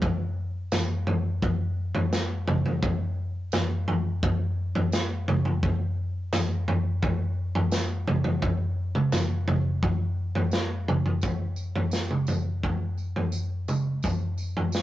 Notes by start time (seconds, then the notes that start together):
0.02 kick, floor tom
0.72 snare, floor tom, tambourine
1.07 floor tom
1.42 kick, floor tom
1.95 floor tom
2.13 snare, tambourine
2.48 floor tom, mid tom
2.66 floor tom
2.83 kick, floor tom
3.52 snare, floor tom, tambourine
3.88 floor tom
4.23 kick, floor tom
4.75 floor tom
4.92 snare, tambourine
5.28 floor tom, mid tom
5.45 floor tom
5.63 kick, floor tom
6.33 snare, floor tom, tambourine
6.68 floor tom
7.03 kick, floor tom
7.55 floor tom
7.72 snare, tambourine
8.07 floor tom, mid tom
8.24 floor tom
8.42 kick, floor tom
8.95 mid tom
9.12 snare, floor tom, tambourine
9.48 floor tom, mid tom
9.83 kick, floor tom
10.35 floor tom
10.51 snare, tambourine
10.88 floor tom, mid tom
11.06 floor tom
11.21 kick, floor tom, tambourine
11.56 tambourine
11.76 floor tom
11.91 snare, tambourine
12.11 mid tom
12.27 floor tom, tambourine
12.63 kick, floor tom
12.98 tambourine
13.16 floor tom
13.32 tambourine
13.68 mid tom, tambourine
14.03 kick, floor tom, tambourine
14.38 tambourine
14.57 floor tom
14.72 snare, tambourine